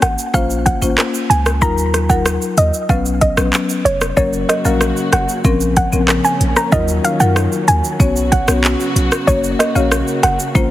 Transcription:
0.02 808-style bass G#1, synth pluck F#5, cross-stick, closed hi-hat, shaker
0.19 shaker
0.34 808-style bass A#1, marimba A#3 C#4 F4 C5, synth pluck F5, kick, shaker
0.50 shaker
0.66 synth pluck F#5, kick, closed hi-hat, shaker
0.82 808-style bass G#1, marimba A#3 C#4 F4 C5, shaker
0.98 cross-stick, clap, shaker
1.14 shaker
1.30 808-style bass C#2, synth pluck G#5, closed hi-hat, shaker
1.46 cross-stick, shaker
1.61 808-style bass D#2, marimba F#3 D#4 F4 A#4, synth pluck A#5, kick, shaker
1.78 shaker
1.94 cross-stick, closed hi-hat, shaker
2.09 marimba F#3 D#4 F4 A#4, synth pluck F#5, kick, shaker
2.26 cross-stick, shaker
2.42 shaker
2.57 808-style bass D#2, synth pluck D#5, closed hi-hat, shaker
2.74 shaker
2.89 808-style bass B1, marimba F#3 B3 C#4 B4, synth pluck F5, kick, shaker
3.06 shaker
3.21 synth pluck D#5, kick, closed hi-hat, shaker
3.37 808-style bass A#1, marimba F#3 B3 C#4 B4, cross-stick, shaker
3.53 clap, shaker
3.69 shaker
3.85 808-style bass F1, synth pluck C#5, closed hi-hat, shaker
4.01 cross-stick, shaker
4.17 808-style bass F#1, string section C#3 F#3 A#3 F#4, marimba F#3 A#3 C#4 A#4, synth pluck C#5, kick, shaker
4.33 shaker
4.49 synth pluck D#5, cross-stick, closed hi-hat, shaker
4.65 808-style bass A#1, marimba F#3 A#3 C#4 A#4, synth pluck F5, shaker
4.81 cross-stick, shaker
4.97 shaker
5.13 808-style bass F#1, synth pluck F#5, cross-stick, closed hi-hat, shaker
5.29 shaker
5.44 808-style bass A#1, string section C#3 C4 C#4, marimba F3 C4 C#4 A#4, kick, shaker
5.61 shaker
5.77 synth pluck F#5, kick, closed hi-hat, shaker
5.92 808-style bass A#1, marimba F3 C4 C#4 A#4, shaker
6.08 cross-stick, clap, shaker
6.24 synth pluck G#5, shaker
6.41 808-style bass A#1, closed hi-hat, shaker
6.56 synth pluck A#5, cross-stick, shaker
6.72 808-style bass D#2, string section D#3 F#3, marimba F#3 D#4 F4 A#4, synth pluck D#5, kick, shaker
6.88 shaker
7.04 synth pluck F5, closed hi-hat, shaker
7.20 808-style bass F#2, marimba F#3 D#4 F4 A#4, synth pluck F#5, shaker
7.36 cross-stick, shaker
7.52 shaker
7.68 808-style bass D#2, synth pluck G#5, closed hi-hat, shaker
7.84 shaker
8.00 808-style bass B1, string section C#3 B3 F#4, marimba B3 C#4 F#4 C#5, kick, shaker
8.16 shaker
8.32 synth pluck F#5, kick, closed hi-hat, shaker
8.48 808-style bass B1, marimba B3 C#4 F#4 C#5, cross-stick, shaker
8.64 clap, shaker
8.80 shaker
8.96 808-style bass B1, closed hi-hat, shaker
9.12 cross-stick, shaker
9.27 808-style bass F#1, marimba A#3 C#4 F#4 C#5, string section A#3, synth pluck C#5, kick, shaker
9.44 shaker
9.59 synth pluck D#5, cross-stick, closed hi-hat, shaker
9.75 808-style bass A#1, marimba A#3 C#4 F#4 C#5, synth pluck F5, shaker
9.92 cross-stick, shaker
10.08 shaker
10.23 808-style bass F#1, synth pluck F#5, cross-stick, closed hi-hat, shaker
10.40 shaker
10.55 808-style bass A#1, marimba A#3 C#4 F4 C5, string section C4 F4, kick, shaker

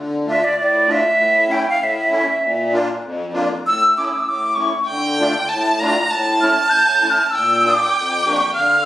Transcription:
Already playing: accordion D3
0.26 accordion A3 D4 F4, flute E5
0.44 flute D5
0.58 accordion A2, flute D5
0.87 accordion A3 D4 F4, flute E5
1.17 accordion A2
1.49 accordion A3 C#4 E4, flute G5
1.70 flute F5
1.79 accordion A2, flute E5
2.11 accordion A3 C#4 E4
2.43 accordion A#2
2.73 accordion A#3 D4 F4
3.03 accordion F2
3.33 accordion A#3 D4 F4
3.65 accordion A2, flute E6
3.97 accordion A3 C#4 E4, flute D6
4.05 flute E6
4.13 flute D6
4.20 flute E6
4.27 accordion A2, flute D6
4.55 accordion A3 C#4 E4, flute C#6
4.87 accordion D3, violin G5
5.19 accordion A3 D4 F4
5.49 accordion A2, violin A5
5.80 accordion A3 D4 F4, violin A#5
6.10 accordion A2, violin A5
6.41 accordion A3 C#4 E4, flute F6
6.70 accordion A2, flute G6
7.03 accordion A3 C#4 E4
7.10 flute F6
7.26 flute F6
7.31 flute E6
7.35 accordion A#2, violin G5
7.62 accordion A#3 D4 F4, flute D6
7.97 accordion F2
8.22 flute C#6
8.26 accordion A#3 D4 G4
8.54 accordion D3, violin F5, flute F6

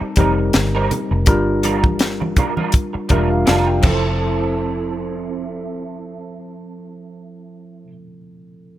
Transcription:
Already playing: tine electric piano G3 C4 D#4 A#4
0.01 muted clean electric guitar stroke, muted fingered electric bass stroke
0.16 fingered electric bass F1, tine electric piano G3 C4 D#4 A#4, clean electric guitar G3 C4 D#4 A#4, kick, closed hi-hat, muted conga, high conga
0.38 muted clean electric guitar stroke
0.53 fingered electric bass G1, muted clean electric guitar stroke, snare, closed hi-hat
0.75 clean electric guitar G3 C4 D#4 A#4
0.91 closed hi-hat, muted conga, low conga
1.11 fingered electric bass F1, muted clean electric guitar stroke
1.26 fingered electric bass G1, tine electric piano G3 D4 F4 A#4, kick, closed hi-hat, low conga
1.63 clean electric guitar G3 D4 F4 A#4, closed hi-hat, muted conga
1.84 kick, high conga
1.99 muted clean electric guitar stroke, snare, closed hi-hat, muted conga
2.20 muted clean electric guitar stroke, high conga
2.36 clean electric guitar G3 D4 F4 A#4, kick, closed hi-hat, muted conga, low conga
2.56 clean electric guitar G3 D4 F4 A#4, high conga
2.72 kick, closed hi-hat
2.93 muted clean electric guitar stroke, muted fingered electric bass stroke
3.09 fingered electric bass E1, clean electric guitar G3 D4 F4 A#4, tine electric piano G3 D4 F4 A#4 E5, kick, closed hi-hat, muted conga, high conga
3.30 tine electric piano F5, muted clean electric guitar stroke
3.46 fingered electric bass F1, clean electric guitar G3 D4 F4 A#4, tine electric piano F4 D5 F5, snare, closed hi-hat
3.67 tine electric piano G5
3.81 fingered electric bass F1, tine electric piano F3 C4 E4, clean electric guitar C4 E4 A4, kick, crash, high conga
3.87 tine electric piano A4, clean electric guitar C5

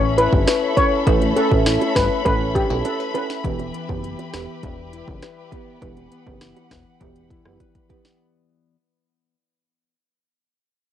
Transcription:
Already playing: analog synth bass A1, nylon-string guitar A3 C#4 E4 B4, string section A4 C#5 E5 B5
0.18 nylon-string guitar E4, steel pan B4, closed hi-hat
0.33 analog synth bass G1, kick, high bongo
0.47 nylon-string guitar B4, cross-stick, snare, closed hi-hat, high bongo
0.77 marimba C#4 E4 A4 B4, nylon-string guitar C#4, steel pan C#5, kick, closed hi-hat, high bongo, low bongo
1.06 analog synth bass A1, nylon-string guitar A3, marimba C#4 E4 A4 B4, kick, closed hi-hat
1.22 closed hi-hat, high bongo
1.36 nylon-string guitar C#4, steel pan A4, closed hi-hat
1.51 analog synth bass A1, marimba C#4 E4 A4 B4, kick, high bongo
1.66 nylon-string guitar E4, cross-stick, snare, closed hi-hat
1.81 closed hi-hat, high bongo
1.96 analog synth bass G1, steel pan B4, nylon-string guitar B4, kick, cross-stick, snare, closed hi-hat
2.25 analog synth bass A1, marimba C#4 E4 A4 B4, nylon-string guitar C#4, steel pan B4, kick, closed hi-hat
2.55 nylon-string guitar D4, steel pan G4, kick, closed hi-hat
2.70 analog synth bass B1, marimba C#4 E4 A4 B4, nylon-string guitar E4, high bongo
2.85 steel pan A4, nylon-string guitar A4, closed hi-hat, high bongo
3.00 nylon-string guitar B4
3.14 marimba C#4 E4 A4 B4, nylon-string guitar C#4, steel pan B4, closed hi-hat, high bongo, low bongo
3.30 snare
3.44 analog synth bass E1, nylon-string guitar E3, marimba B3 E4 G4 B4, string section G4 B4, kick, closed hi-hat
3.59 closed hi-hat, high bongo
3.74 nylon-string guitar B3, closed hi-hat
3.89 analog synth bass F#1, marimba B3 E4 G4 B4, kick, high bongo
4.04 nylon-string guitar E4, closed hi-hat
4.19 closed hi-hat, high bongo
4.33 analog synth bass E1, marimba B3 E4 G4 B4, nylon-string guitar B4, cross-stick, snare, closed hi-hat
4.63 analog synth bass E1, nylon-string guitar G3, kick, closed hi-hat
4.93 nylon-string guitar E4, closed hi-hat
5.08 analog synth bass F#1, kick, high bongo
5.22 nylon-string guitar B4, cross-stick, snare, closed hi-hat, high bongo
5.52 marimba B3 E4 G4 B4, nylon-string guitar B3, kick, closed hi-hat, high bongo, low bongo
5.82 analog synth bass E1, nylon-string guitar E3, marimba B3 E4 G4 B4, string section F#5, kick, closed hi-hat
5.97 closed hi-hat, high bongo
6.12 nylon-string guitar B3, closed hi-hat
6.26 analog synth bass F#1, marimba B3 E4 G4 B4, kick, high bongo
6.41 nylon-string guitar E4, cross-stick, snare, closed hi-hat
6.57 closed hi-hat, high bongo
6.71 analog synth bass E1, nylon-string guitar B4, kick, cross-stick, snare, closed hi-hat
7.01 analog synth bass E1, nylon-string guitar G3, marimba B3 E4 G4 B4, kick, closed hi-hat
7.16 closed hi-hat
7.31 nylon-string guitar E4, kick, closed hi-hat
7.45 analog synth bass F#1, marimba B3 E4 G4 B4, cross-stick
7.60 nylon-string guitar B4, kick, closed hi-hat, high bongo
7.75 kick, closed hi-hat
7.89 marimba B3 E4 G4 B4, nylon-string guitar B3, kick, closed hi-hat, high bongo, low bongo
8.05 snare

